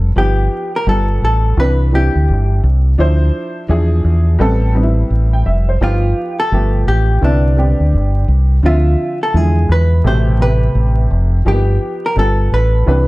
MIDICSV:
0, 0, Header, 1, 4, 480
1, 0, Start_track
1, 0, Tempo, 705882
1, 112, Time_signature, 4, 2, 24, 8
1, 8892, End_track
2, 0, Start_track
2, 0, Title_t, "Hollow-body jazz guitar"
2, 0, Program_c, 0, 26
2, 122, Note_on_c, 0, 67, 81
2, 482, Note_off_c, 0, 67, 0
2, 519, Note_on_c, 0, 70, 88
2, 593, Note_off_c, 0, 70, 0
2, 605, Note_on_c, 0, 69, 89
2, 822, Note_off_c, 0, 69, 0
2, 847, Note_on_c, 0, 69, 82
2, 1063, Note_off_c, 0, 69, 0
2, 1086, Note_on_c, 0, 71, 96
2, 1323, Note_off_c, 0, 71, 0
2, 1326, Note_on_c, 0, 67, 83
2, 1771, Note_off_c, 0, 67, 0
2, 3968, Note_on_c, 0, 65, 88
2, 4325, Note_off_c, 0, 65, 0
2, 4349, Note_on_c, 0, 69, 102
2, 4676, Note_off_c, 0, 69, 0
2, 4679, Note_on_c, 0, 67, 92
2, 4922, Note_off_c, 0, 67, 0
2, 4925, Note_on_c, 0, 62, 70
2, 5611, Note_off_c, 0, 62, 0
2, 5889, Note_on_c, 0, 65, 76
2, 6245, Note_off_c, 0, 65, 0
2, 6276, Note_on_c, 0, 69, 80
2, 6369, Note_off_c, 0, 69, 0
2, 6369, Note_on_c, 0, 68, 88
2, 6606, Note_off_c, 0, 68, 0
2, 6609, Note_on_c, 0, 71, 88
2, 6847, Note_off_c, 0, 71, 0
2, 6849, Note_on_c, 0, 72, 94
2, 7064, Note_off_c, 0, 72, 0
2, 7086, Note_on_c, 0, 71, 94
2, 7532, Note_off_c, 0, 71, 0
2, 7806, Note_on_c, 0, 67, 83
2, 8200, Note_on_c, 0, 70, 94
2, 8203, Note_off_c, 0, 67, 0
2, 8282, Note_off_c, 0, 70, 0
2, 8289, Note_on_c, 0, 69, 96
2, 8504, Note_off_c, 0, 69, 0
2, 8526, Note_on_c, 0, 71, 90
2, 8892, Note_off_c, 0, 71, 0
2, 8892, End_track
3, 0, Start_track
3, 0, Title_t, "Upright piano"
3, 0, Program_c, 1, 0
3, 106, Note_on_c, 1, 53, 70
3, 110, Note_on_c, 1, 59, 67
3, 116, Note_on_c, 1, 63, 63
3, 122, Note_on_c, 1, 67, 81
3, 546, Note_off_c, 1, 53, 0
3, 548, Note_off_c, 1, 59, 0
3, 550, Note_off_c, 1, 63, 0
3, 553, Note_off_c, 1, 67, 0
3, 588, Note_on_c, 1, 55, 68
3, 593, Note_on_c, 1, 59, 64
3, 596, Note_on_c, 1, 65, 62
3, 603, Note_on_c, 1, 69, 78
3, 1070, Note_off_c, 1, 55, 0
3, 1070, Note_on_c, 1, 52, 74
3, 1072, Note_off_c, 1, 59, 0
3, 1074, Note_off_c, 1, 65, 0
3, 1076, Note_on_c, 1, 60, 71
3, 1077, Note_off_c, 1, 69, 0
3, 1081, Note_on_c, 1, 62, 69
3, 1086, Note_on_c, 1, 71, 87
3, 1289, Note_off_c, 1, 52, 0
3, 1292, Note_off_c, 1, 60, 0
3, 1295, Note_off_c, 1, 62, 0
3, 1297, Note_off_c, 1, 71, 0
3, 1309, Note_on_c, 1, 52, 65
3, 1312, Note_on_c, 1, 60, 56
3, 1318, Note_on_c, 1, 62, 60
3, 1322, Note_on_c, 1, 64, 72
3, 1965, Note_off_c, 1, 52, 0
3, 1967, Note_off_c, 1, 60, 0
3, 1970, Note_off_c, 1, 62, 0
3, 1972, Note_off_c, 1, 64, 0
3, 2025, Note_on_c, 1, 53, 80
3, 2029, Note_on_c, 1, 62, 77
3, 2034, Note_on_c, 1, 64, 79
3, 2040, Note_on_c, 1, 72, 96
3, 2465, Note_off_c, 1, 53, 0
3, 2467, Note_off_c, 1, 62, 0
3, 2469, Note_off_c, 1, 64, 0
3, 2473, Note_off_c, 1, 72, 0
3, 2505, Note_on_c, 1, 53, 88
3, 2510, Note_on_c, 1, 62, 74
3, 2515, Note_on_c, 1, 64, 81
3, 2519, Note_on_c, 1, 68, 91
3, 2983, Note_on_c, 1, 55, 89
3, 2988, Note_off_c, 1, 53, 0
3, 2989, Note_on_c, 1, 59, 80
3, 2990, Note_off_c, 1, 62, 0
3, 2992, Note_on_c, 1, 60, 86
3, 2993, Note_off_c, 1, 64, 0
3, 2995, Note_off_c, 1, 68, 0
3, 2999, Note_on_c, 1, 69, 101
3, 3205, Note_off_c, 1, 55, 0
3, 3208, Note_off_c, 1, 59, 0
3, 3210, Note_off_c, 1, 60, 0
3, 3213, Note_off_c, 1, 69, 0
3, 3227, Note_on_c, 1, 55, 75
3, 3231, Note_on_c, 1, 59, 71
3, 3236, Note_on_c, 1, 60, 73
3, 3239, Note_on_c, 1, 63, 68
3, 3284, Note_on_c, 1, 64, 79
3, 3291, Note_off_c, 1, 63, 0
3, 3626, Note_on_c, 1, 79, 66
3, 3708, Note_off_c, 1, 79, 0
3, 3712, Note_on_c, 1, 76, 68
3, 3857, Note_off_c, 1, 76, 0
3, 3867, Note_on_c, 1, 72, 62
3, 3884, Note_off_c, 1, 55, 0
3, 3886, Note_off_c, 1, 59, 0
3, 3889, Note_off_c, 1, 60, 0
3, 3913, Note_off_c, 1, 64, 0
3, 3949, Note_on_c, 1, 53, 75
3, 3954, Note_on_c, 1, 59, 68
3, 3960, Note_on_c, 1, 63, 68
3, 3964, Note_on_c, 1, 67, 77
3, 4093, Note_off_c, 1, 72, 0
3, 4387, Note_off_c, 1, 53, 0
3, 4389, Note_off_c, 1, 59, 0
3, 4393, Note_off_c, 1, 63, 0
3, 4394, Note_off_c, 1, 67, 0
3, 4429, Note_on_c, 1, 53, 72
3, 4435, Note_on_c, 1, 57, 66
3, 4440, Note_on_c, 1, 59, 64
3, 4445, Note_on_c, 1, 67, 75
3, 4900, Note_off_c, 1, 59, 0
3, 4905, Note_on_c, 1, 50, 71
3, 4910, Note_off_c, 1, 53, 0
3, 4910, Note_on_c, 1, 59, 71
3, 4913, Note_off_c, 1, 57, 0
3, 4916, Note_on_c, 1, 60, 71
3, 4918, Note_off_c, 1, 67, 0
3, 4922, Note_on_c, 1, 64, 82
3, 5127, Note_off_c, 1, 50, 0
3, 5129, Note_off_c, 1, 59, 0
3, 5132, Note_off_c, 1, 60, 0
3, 5135, Note_off_c, 1, 64, 0
3, 5144, Note_on_c, 1, 50, 66
3, 5149, Note_on_c, 1, 59, 54
3, 5155, Note_on_c, 1, 60, 61
3, 5159, Note_on_c, 1, 67, 73
3, 5803, Note_off_c, 1, 50, 0
3, 5805, Note_off_c, 1, 59, 0
3, 5808, Note_off_c, 1, 60, 0
3, 5810, Note_off_c, 1, 67, 0
3, 5870, Note_on_c, 1, 50, 68
3, 5875, Note_on_c, 1, 53, 65
3, 5880, Note_on_c, 1, 60, 64
3, 5885, Note_on_c, 1, 76, 80
3, 6307, Note_off_c, 1, 50, 0
3, 6310, Note_off_c, 1, 53, 0
3, 6312, Note_off_c, 1, 60, 0
3, 6315, Note_off_c, 1, 76, 0
3, 6349, Note_on_c, 1, 50, 70
3, 6351, Note_on_c, 1, 53, 63
3, 6358, Note_on_c, 1, 56, 61
3, 6363, Note_on_c, 1, 64, 74
3, 6829, Note_on_c, 1, 48, 77
3, 6830, Note_off_c, 1, 50, 0
3, 6831, Note_off_c, 1, 53, 0
3, 6833, Note_on_c, 1, 57, 67
3, 6834, Note_off_c, 1, 56, 0
3, 6837, Note_off_c, 1, 64, 0
3, 6838, Note_on_c, 1, 47, 68
3, 6844, Note_on_c, 1, 67, 84
3, 7048, Note_off_c, 1, 48, 0
3, 7051, Note_off_c, 1, 57, 0
3, 7053, Note_off_c, 1, 47, 0
3, 7056, Note_off_c, 1, 67, 0
3, 7069, Note_on_c, 1, 48, 67
3, 7073, Note_on_c, 1, 57, 59
3, 7077, Note_on_c, 1, 59, 56
3, 7083, Note_on_c, 1, 67, 71
3, 7725, Note_off_c, 1, 48, 0
3, 7727, Note_off_c, 1, 57, 0
3, 7729, Note_off_c, 1, 59, 0
3, 7732, Note_off_c, 1, 67, 0
3, 7785, Note_on_c, 1, 53, 72
3, 7791, Note_on_c, 1, 58, 51
3, 7794, Note_on_c, 1, 63, 67
3, 7798, Note_on_c, 1, 67, 77
3, 7833, Note_on_c, 1, 59, 70
3, 7847, Note_off_c, 1, 58, 0
3, 8225, Note_off_c, 1, 53, 0
3, 8229, Note_off_c, 1, 63, 0
3, 8231, Note_off_c, 1, 67, 0
3, 8249, Note_off_c, 1, 59, 0
3, 8265, Note_on_c, 1, 55, 67
3, 8270, Note_on_c, 1, 59, 66
3, 8276, Note_on_c, 1, 65, 63
3, 8281, Note_on_c, 1, 69, 76
3, 8746, Note_on_c, 1, 52, 81
3, 8748, Note_off_c, 1, 55, 0
3, 8750, Note_on_c, 1, 60, 70
3, 8751, Note_off_c, 1, 59, 0
3, 8753, Note_off_c, 1, 65, 0
3, 8754, Note_on_c, 1, 62, 70
3, 8756, Note_off_c, 1, 69, 0
3, 8760, Note_on_c, 1, 71, 86
3, 8892, Note_off_c, 1, 52, 0
3, 8892, Note_off_c, 1, 60, 0
3, 8892, Note_off_c, 1, 62, 0
3, 8892, Note_off_c, 1, 71, 0
3, 8892, End_track
4, 0, Start_track
4, 0, Title_t, "Fingered electric bass"
4, 0, Program_c, 2, 33
4, 0, Note_on_c, 2, 29, 97
4, 81, Note_off_c, 2, 29, 0
4, 106, Note_on_c, 2, 31, 101
4, 320, Note_off_c, 2, 31, 0
4, 588, Note_on_c, 2, 31, 91
4, 802, Note_off_c, 2, 31, 0
4, 829, Note_on_c, 2, 33, 77
4, 1042, Note_off_c, 2, 33, 0
4, 1067, Note_on_c, 2, 36, 99
4, 1416, Note_off_c, 2, 36, 0
4, 1464, Note_on_c, 2, 38, 84
4, 1553, Note_on_c, 2, 31, 89
4, 1563, Note_off_c, 2, 38, 0
4, 1764, Note_off_c, 2, 31, 0
4, 1792, Note_on_c, 2, 36, 89
4, 2004, Note_off_c, 2, 36, 0
4, 2029, Note_on_c, 2, 38, 108
4, 2242, Note_off_c, 2, 38, 0
4, 2510, Note_on_c, 2, 40, 92
4, 2723, Note_off_c, 2, 40, 0
4, 2750, Note_on_c, 2, 40, 86
4, 2963, Note_off_c, 2, 40, 0
4, 2988, Note_on_c, 2, 33, 101
4, 3414, Note_off_c, 2, 33, 0
4, 3470, Note_on_c, 2, 33, 81
4, 3682, Note_off_c, 2, 33, 0
4, 3711, Note_on_c, 2, 29, 86
4, 3923, Note_off_c, 2, 29, 0
4, 3949, Note_on_c, 2, 31, 110
4, 4162, Note_off_c, 2, 31, 0
4, 4432, Note_on_c, 2, 31, 92
4, 4644, Note_off_c, 2, 31, 0
4, 4671, Note_on_c, 2, 33, 83
4, 4884, Note_off_c, 2, 33, 0
4, 4911, Note_on_c, 2, 36, 97
4, 5258, Note_off_c, 2, 36, 0
4, 5303, Note_on_c, 2, 38, 76
4, 5390, Note_on_c, 2, 31, 85
4, 5400, Note_off_c, 2, 38, 0
4, 5603, Note_off_c, 2, 31, 0
4, 5631, Note_on_c, 2, 36, 90
4, 5843, Note_off_c, 2, 36, 0
4, 5868, Note_on_c, 2, 38, 112
4, 6082, Note_off_c, 2, 38, 0
4, 6351, Note_on_c, 2, 40, 87
4, 6563, Note_off_c, 2, 40, 0
4, 6590, Note_on_c, 2, 40, 86
4, 6803, Note_off_c, 2, 40, 0
4, 6829, Note_on_c, 2, 33, 97
4, 7254, Note_off_c, 2, 33, 0
4, 7309, Note_on_c, 2, 33, 88
4, 7522, Note_off_c, 2, 33, 0
4, 7551, Note_on_c, 2, 29, 94
4, 7763, Note_off_c, 2, 29, 0
4, 7790, Note_on_c, 2, 31, 105
4, 8003, Note_off_c, 2, 31, 0
4, 8270, Note_on_c, 2, 31, 84
4, 8483, Note_off_c, 2, 31, 0
4, 8513, Note_on_c, 2, 33, 79
4, 8724, Note_off_c, 2, 33, 0
4, 8753, Note_on_c, 2, 36, 100
4, 8892, Note_off_c, 2, 36, 0
4, 8892, End_track
0, 0, End_of_file